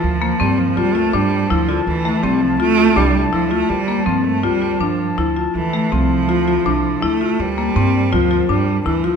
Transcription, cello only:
\new Staff \with { instrumentName = "Cello" } { \clef bass \time 5/4 \key c \mixolydian \tempo 4 = 163 f4 g8 f8 g8 a8 g4 f8 d8 | e4 g8 f8 a4 g4 f8 a8 | g4 f8 a8 g4 f4. r8 | e4 f2. a4 |
g2 f4 g4 e8 f8 | }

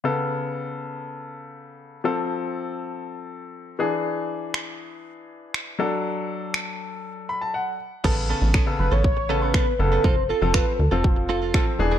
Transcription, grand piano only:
\new Staff \with { instrumentName = "Grand piano" } { \time 4/4 \key a \major \tempo 4 = 120 << { r1 | r1 | r1 | r2 r8 b''16 a''16 fis''4 |
r1 | r1 | } \\ { <cis b a'>1 | <f c' a'>2.~ <f c' a'>8 <e d' gis'>8~ | <e d' gis'>2.~ <e d' gis'>8 <fis d' a'>8~ | <fis d' a'>2.~ <fis d' a'>8 r8 |
<cis b a'>8. r8 <cis b a'>8. r8 <cis b a'>8. r16 <cis b a'>8 | r8. <f c' a'>8. r16 <f c' a'>8. r8 <f c' a'>8 <e d' gis'>8 | } >> }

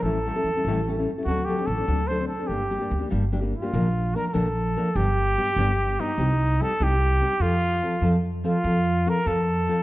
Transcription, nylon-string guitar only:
\new Staff \with { instrumentName = "Nylon-string guitar" } { \time 6/8 \key g \minor \tempo 4. = 98 <a, e g cis' e' a'>16 r16 <g cis' e' a'>16 <g cis' e' a'>16 r16 <g cis' e' a'>16 <a, e g cis' e' a'>16 r16 <g cis' e' a'>16 <g cis' e' a'>16 r16 <g cis' e' a'>16 | <d fis c' d' a'>16 r16 <fis c' d' a'>16 <c' d' a'>16 r16 <c' d' a'>16 <d fis c' d' a'>16 r16 <fis c' d' a'>16 <c' d'>16 r16 <c' d' a'>16 | <g, d g bes d' g'>16 r16 <g bes d' g'>16 <g bes d' g'>16 r16 <g bes d' g'>16 <g, d g bes d' g'>16 r16 <g bes d' g'>16 <g bes d' g'>16 r16 <g bes d' g'>16 | \key bes \major <bes, d f bes d' bes'>16 r8. <f bes d' bes'>16 r16 <bes, d f bes d' bes'>16 r8. <f bes d' bes'>16 r16 |
<g, d g b d' g'>16 r8. <g b d' g'>16 r16 <g, d g b d' g'>16 r8. <g b d' g'>16 r16 | <c g c' ees' g'>16 r8. <g c' ees' g'>16 r16 <c g c' ees' g'>16 r8. <g c' ees' g'>16 r16 | <f c' f' a'>16 r8. <f c' f' a'>16 r16 <f c' f' a'>16 r8. <f c' f' a'>16 r16 | <f c' f' a'>16 r8. <f c' f' a'>16 r16 <f c' f' a'>16 r8. <f c' f' a'>16 r16 | }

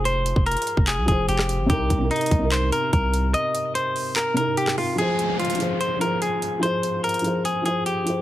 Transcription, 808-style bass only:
\new Staff \with { instrumentName = "808-style bass" } { \clef bass \time 4/4 \key f \minor \tempo 4 = 146 f,,8. f,,8 r8 f,,8 c,16 f,,8 f,,8. aes,,16 | c,8 c,8 r8 c,4 r8 c,4 | r1 | r1 |
r1 | }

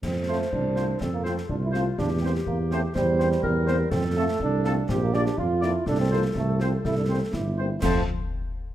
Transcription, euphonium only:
\new Staff \with { instrumentName = "Euphonium" } { \time 2/4 \key f \major \tempo 4 = 123 c'8 a8 d'4 | c'16 bes16 c'8 d'16 e'16 f'8 | d'8 c'8 bes8 a8 | g2 |
c'8 a8 d'4 | c'16 bes16 d'8 f'8 e'8 | d'16 c'16 bes8 a8 c'8 | e'16 d'16 c'8 e'4 |
f'8 r4. | }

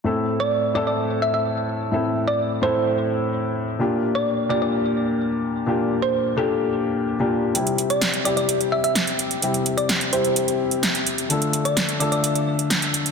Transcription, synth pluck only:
\new Staff \with { instrumentName = "Synth pluck" } { \time 4/4 \key a \phrygian \tempo 4 = 128 r8. d''16 r8 d''16 d''16 r8 e''16 e''16 r4 | r8. d''16 r8 c''4. r4 | r8. d''16 r8 d''16 d''16 r2 | r8. c''16 r8 a'8. r4. r16 |
r8. d''16 r8 d''16 d''16 r8 e''16 e''16 r4 | r8. d''16 r8 c''4. r4 | r8. d''16 r8 d''16 d''16 r2 | }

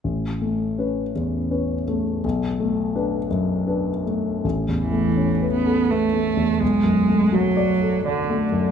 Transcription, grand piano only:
\new Staff \with { instrumentName = "Grand piano" } { \time 3/4 \key a \major \tempo 4 = 83 a,,8 a8 <cis' b'>8 e,8 <cis' b'>8 a8 | b,,8 a8 <d' b'>8 fis,8 <d' b'>8 a8 | \tuplet 3/2 { a,,8 e,8 a8 cis'8 b'8 a'8 b'8 a8 e,8 } | \tuplet 3/2 { b,,8 fis,8 a8 fis'8 d''8 a'8 d''8 a8 fis,8 } | }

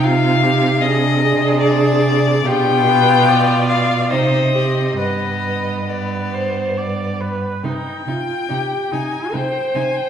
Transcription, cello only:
\new Staff \with { instrumentName = "Cello" } { \clef bass \time 3/4 \key c \minor \tempo 4 = 71 c2. | b,2 c4 | g,2~ g,8. r16 | c8 c8 c8 c8 c8 c8 | }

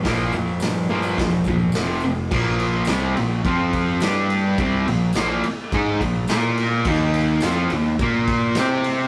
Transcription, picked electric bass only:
\new Staff \with { instrumentName = "Picked electric bass" } { \clef bass \time 4/4 \key bes \major \tempo 4 = 106 bes,,8 f,8 g,4 e,,4 f,,4 | bes,,4 c,8 bes,,8 f,4 g,4 | c,8 bes,,8 bes,,8 r8 aes,8 bes,,8 bes,4 | ees,4 f,8 ees,8 bes,4 c4 | }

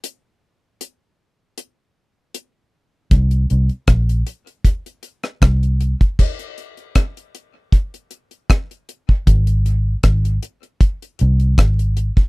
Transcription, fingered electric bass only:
\new Staff \with { instrumentName = "Fingered electric bass" } { \clef bass \time 4/4 \key bes \mixolydian \tempo 4 = 78 r1 | c,8 c,16 r16 bes,,8 r4. c,8. r16 | r1 | aes,,4 aes,,8 r4 c,8 aes,,8. r16 | }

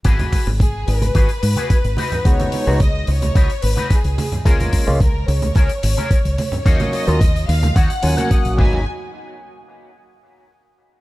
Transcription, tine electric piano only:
\new Staff \with { instrumentName = "Tine electric piano" } { \time 4/4 \key gis \dorian \tempo 4 = 109 r1 | <gis b dis' fis'>8. <gis b dis' fis'>16 r2. | <gis ais cis' eis'>8. <gis ais cis' eis'>16 r2. | <fis ais cis' eis''>8. <fis ais cis' eis'>16 r4. <fis ais cis' eis'>16 <fis ais cis' fis'>8. <fis ais b dis'>8 |
r1 | }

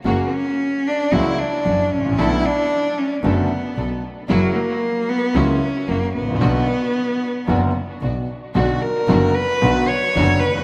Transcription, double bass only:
\new Staff \with { instrumentName = "Double bass" } { \clef bass \time 4/4 \key b \minor \tempo 4 = 113 fis,,8 r4. cis,8 r8 fis,,8 a,,8 | b,,8 r4. fis,,8 r8 b,,8 r8 | fis,,8 r4. cis,8 r8 fis,,8 a,,8 | b,,8 r4. fis,,8 r8 b,,8 r8 |
b,,8 r8 fis,,8 r8 b,,8 r8 fis,,8 r8 | }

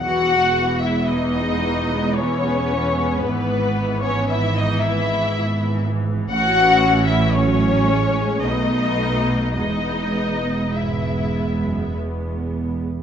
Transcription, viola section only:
\new Staff \with { instrumentName = "Viola section" } { \clef bass \time 3/4 \key e \major \tempo 4 = 56 << { b2.~ | b2. | cis'4 cis'4 b4 | b4 b2 | } \\ { e16 gis16 e16 gis16 e16 gis16 e16 gis16 e16 gis16 e16 gis16 | e16 e16 e16 e16 e16 e16 e16 e16 e16 e16 e16 e16 | e4 fis8 gis8 a4 | gis4 gis4.~ gis16 r16 | } >> }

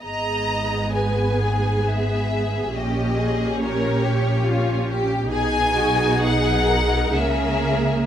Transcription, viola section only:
\new Staff \with { instrumentName = "Viola section" } { \time 3/4 \key gis \minor \tempo 4 = 66 <b gis'>2. | <des' g'>2. | <dis' gis'>2 <ais ais'>4 | }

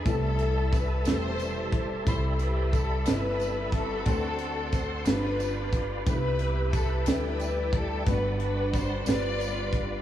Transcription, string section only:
\new Staff \with { instrumentName = "String section" } { \time 6/8 \key g \major \tempo 4. = 60 << { a'4 b'8 c''4 r8 | c''8 b'8 a'8 b'4 a'8~ | a'4 c''8 b'4 r8 | b'4 a'8 b'4 a'8 |
b'8 b'8 c''8 d''4 r8 | } \\ { e'4. <e' g'>4. | <e' g'>4. <e' g'>4 <c' fis'>8~ | <c' fis'>4 r8 <d' f'>4. | <e' g'>4. <e' g'>4. |
<d' fis'>4. <f' b'>4. | } >> }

